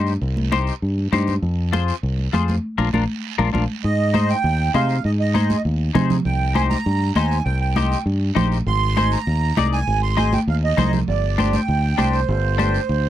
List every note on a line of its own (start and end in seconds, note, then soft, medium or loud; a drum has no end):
0.00 0.16 G2 medium
0.00 0.12 D#4 medium
0.00 0.13 G4 medium
0.00 0.13 C5 medium
0.07 short guiro medium
0.22 0.70 C2 medium
0.22 high conga soft
0.22 long guiro medium
0.37 high conga medium
0.52 0.73 D#4 medium
0.52 0.73 G4 medium
0.52 0.74 C5 medium
0.52 high conga medium
0.52 short guiro medium
0.67 short guiro medium
0.82 1.07 G2 medium
0.82 long guiro medium
0.98 high conga soft
1.12 1.37 G2 medium
1.12 1.34 D#4 medium
1.12 1.34 G4 medium
1.12 1.34 C5 medium
1.12 high conga medium
1.12 short guiro medium
1.27 high conga medium
1.27 short guiro medium
1.42 1.91 F2 medium
1.42 high conga soft
1.42 long guiro medium
1.73 1.94 F4 medium
1.73 1.94 G#4 medium
1.73 1.94 C5 medium
1.73 high conga medium
1.73 short guiro medium
1.88 short guiro medium
2.03 2.27 C2 medium
2.03 long guiro medium
2.19 high conga soft
2.33 2.57 F2 medium
2.33 2.55 F4 medium
2.33 2.55 G#4 medium
2.33 2.55 C5 medium
2.33 high conga medium
2.33 short guiro medium
2.48 high conga medium
2.48 short guiro medium
2.78 2.90 A#1 medium
2.78 2.88 D4 medium
2.78 2.88 F4 medium
2.78 2.88 A#4 medium
2.78 high conga medium
2.78 long guiro loud
2.93 3.05 A#1 medium
2.93 3.03 D4 medium
2.93 3.03 F4 medium
2.93 3.03 A#4 medium
2.93 high conga medium
2.93 long guiro loud
3.38 3.50 A#1 medium
3.38 3.48 D4 medium
3.38 3.48 F4 loud
3.38 3.48 A#4 medium
3.38 high conga medium
3.53 3.65 A#1 medium
3.53 3.63 D4 medium
3.53 3.63 F4 medium
3.53 3.63 A#4 medium
3.53 high conga loud
3.53 long guiro loud
3.84 4.33 G#2 loud
3.84 4.31 D#5 loud
3.84 long guiro medium
4.14 4.35 D#4 medium
4.14 4.36 G#4 medium
4.14 4.36 C5 medium
4.14 high conga medium
4.14 short guiro medium
4.29 4.72 G5 loud
4.29 short guiro medium
4.44 4.68 D#2 loud
4.44 long guiro medium
4.74 4.99 C3 medium
4.74 4.96 D#4 medium
4.74 4.96 G#4 medium
4.74 4.96 C5 medium
4.74 5.03 F5 medium
4.74 high conga medium
4.74 short guiro medium
4.89 short guiro medium
5.04 5.53 G#2 loud
5.04 5.12 D#5 medium
5.04 long guiro medium
5.20 5.62 D#5 medium
5.34 5.56 D#4 medium
5.34 5.56 G#4 medium
5.34 5.56 C5 medium
5.34 high conga medium
5.34 short guiro medium
5.50 high conga medium
5.50 short guiro medium
5.65 5.89 D#2 medium
5.65 long guiro medium
5.95 6.19 C3 medium
5.95 6.16 D#4 medium
5.95 6.16 G#4 medium
5.95 6.16 C5 medium
5.95 high conga medium
5.95 low conga loud
5.95 short guiro medium
6.10 low conga medium
6.10 short guiro medium
6.25 6.74 C2 loud
6.25 6.53 G5 loud
6.25 long guiro medium
6.54 6.76 D#4 medium
6.54 6.77 G4 medium
6.54 6.77 C5 medium
6.54 6.61 G#5 loud
6.54 high conga medium
6.54 short guiro medium
6.69 7.12 A#5 loud
6.69 high conga medium
6.69 short guiro medium
6.86 7.10 G2 loud
6.86 long guiro medium
7.14 7.40 D#2 medium
7.14 7.37 D#4 medium
7.14 7.37 G4 medium
7.14 7.37 C5 medium
7.14 7.43 G#5 medium
7.14 high conga medium
7.14 short guiro medium
7.31 short guiro medium
7.45 7.94 C2 loud
7.45 7.59 G5 loud
7.45 long guiro medium
7.61 8.03 G5 medium
7.76 7.97 D#4 medium
7.76 7.98 G4 medium
7.76 7.98 C5 medium
7.76 high conga medium
7.76 short guiro medium
7.92 short guiro medium
8.06 8.30 G2 medium
8.06 long guiro medium
8.35 8.60 A#1 medium
8.35 8.57 D#4 medium
8.35 8.57 G4 medium
8.35 8.57 C5 medium
8.35 high conga medium
8.35 low conga medium
8.35 short guiro medium
8.52 short guiro medium
8.66 9.15 G#1 loud
8.66 9.13 C6 loud
8.66 long guiro medium
8.97 9.18 D#4 medium
8.97 9.18 G#4 medium
8.97 9.18 C5 medium
8.97 high conga medium
8.97 short guiro medium
9.12 9.69 A#5 loud
9.12 short guiro medium
9.27 9.51 D#2 loud
9.27 long guiro medium
9.57 9.81 C2 medium
9.57 9.78 D#4 medium
9.57 9.79 G#4 medium
9.57 9.79 D5 medium
9.57 high conga medium
9.57 short guiro medium
9.73 10.01 G#5 loud
9.73 short guiro medium
9.87 10.36 G#1 loud
9.87 long guiro medium
10.03 10.18 C6 loud
10.17 10.38 D#4 medium
10.17 10.39 G#4 medium
10.17 10.39 C5 medium
10.17 10.34 G#5 loud
10.17 high conga medium
10.17 short guiro medium
10.33 10.40 G5 medium
10.33 high conga medium
10.33 short guiro medium
10.47 10.72 D#2 loud
10.47 10.56 F5 medium
10.47 long guiro medium
10.64 10.92 D#5 loud
10.77 11.02 C2 medium
10.77 10.99 D#4 medium
10.77 10.99 G#4 medium
10.77 10.99 C5 medium
10.77 high conga medium
10.77 low conga medium
10.77 short guiro medium
10.93 low conga medium
10.93 short guiro medium
11.08 11.56 G1 loud
11.08 11.55 D5 medium
11.08 long guiro medium
11.38 11.59 D4 medium
11.38 11.60 G4 medium
11.38 11.60 C5 medium
11.38 high conga medium
11.38 short guiro medium
11.53 12.16 G5 medium
11.53 high conga medium
11.53 short guiro medium
11.68 11.93 D2 loud
11.68 long guiro medium
11.98 12.23 C2 medium
11.98 12.19 D4 medium
11.98 12.20 G4 medium
11.98 12.20 C5 medium
11.98 high conga medium
11.98 short guiro medium
12.13 13.09 C5 medium
12.13 short guiro medium
12.29 12.77 G1 loud
12.29 long guiro medium
12.58 12.80 D4 medium
12.58 12.80 G4 medium
12.58 12.80 C5 medium
12.58 high conga medium
12.58 short guiro medium
12.74 short guiro medium
12.89 13.09 D2 medium
12.89 long guiro medium